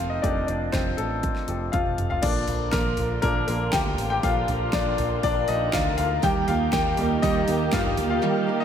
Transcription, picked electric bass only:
0.00 F1
0.24 F1
0.48 F1
0.73 F1
0.98 A1
1.48 F1
1.74 F1
1.98 F1
2.23 A#1
2.49 A#1
2.73 A#1
2.99 A#1
3.24 A#1
3.48 A#1
3.74 D2
3.98 A1
4.23 A#1
4.48 A#1
4.73 A#1
4.99 A#1
5.24 A#1
5.49 A#1
5.74 D2
5.98 D2
6.23 D#2
6.49 D#2
6.73 D#2
6.98 D#2
7.23 D#2
7.48 D#2
7.73 G2
7.98 D2

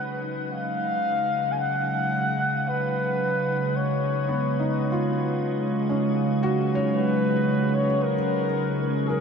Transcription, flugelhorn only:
Already playing: F#5
0.52 F5
1.52 G#5
1.59 F#5
2.68 B4
3.76 C#5
6.94 B4
7.74 C#5
8.03 A#4
8.81 A#4
9.07 G#4

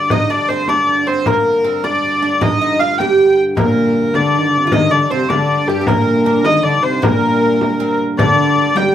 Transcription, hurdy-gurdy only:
Already playing: D5
0.11 D#5
0.30 D5
0.49 C5
0.69 D5
1.07 C5
1.27 A#4
1.84 D5
2.42 D#5
2.80 F5
2.98 G5
3.58 A#4
4.15 D5
4.73 D#5
4.91 D5
5.11 C5
5.29 D5
5.68 G4
5.87 A#4
6.45 D#5
6.63 D5
6.83 C5
7.03 A#4
8.18 D5
8.77 G5

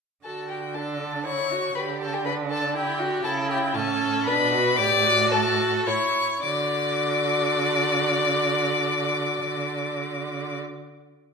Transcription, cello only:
0.24 D3
1.75 D3
3.25 C#3
3.75 A2
4.26 B2
4.78 A2
5.86 A2
6.43 D3

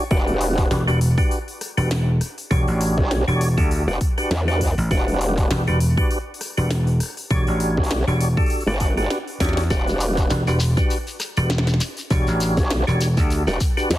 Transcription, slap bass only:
0.71 E1
0.88 E1
1.78 E1
2.51 E1
2.68 A1
3.28 E1
3.58 D2
4.78 A1
5.51 E1
5.68 E1
6.58 E1
7.31 E1
7.48 A1
8.07 E1
9.40 E2
10.31 E1
10.47 E1
11.37 E1
12.11 E1
12.28 A1
12.88 E1
13.18 D2

